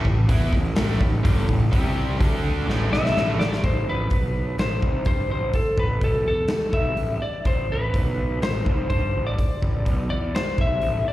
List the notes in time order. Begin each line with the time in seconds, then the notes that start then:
0.05 A1 A2 E3, kick
0.29 E2 E3 B3 E4, kick, open hi-hat
0.52 A1 A2 E3, kick
0.76 A1 A2 E3 A3, snare, open hi-hat
1.00 A1 A2 E3, kick
1.23 G1 G2 D3 G3, kick, open hi-hat
1.48 A1 A2 E3, kick
1.71 C2 C3 G3 C4, kick, open hi-hat
2.18 D2 D3 A3 D4, kick, open hi-hat
2.67 A1 A2 E3 A3, snare
2.90 B1 B2 F#3 B3 E5, snare
3.06 snare
3.14 A1 A2 E3 A3, snare
3.39 D5, snare
3.53 snare
3.64 A1 C5, kick, open hi-hat
3.87 A1 B4
4.10 B1, kick, open hi-hat
4.58 A1 C5, snare, open hi-hat
4.82 C2, kick
5.05 G2 C5, kick, open hi-hat
5.29 A1 C5
5.53 A4, kick, open hi-hat
5.78 A1 B4, kick
6.01 B1 A4, kick, open hi-hat
6.24 E2 A4
6.48 muted picked electric bass stroke, snare, open hi-hat
6.73 B1 E5, kick
6.95 A1, open hi-hat
7.21 D5, muted picked electric bass stroke
7.45 A1 C5, kick, open hi-hat
7.69 A1 B4
7.94 B1, kick, open hi-hat
8.42 A1 C5, snare, open hi-hat
8.66 C2, kick
8.90 G2 C5, kick, open hi-hat
9.14 A1
9.27 D5
9.39 kick, open hi-hat
9.62 A1, kick
9.86 B1, kick, open hi-hat
10.09 E2 D5
10.34 C5, muted picked electric bass stroke, snare, open hi-hat
10.58 B1 E5, kick
10.81 A1, open hi-hat
11.07 D5, muted picked electric bass stroke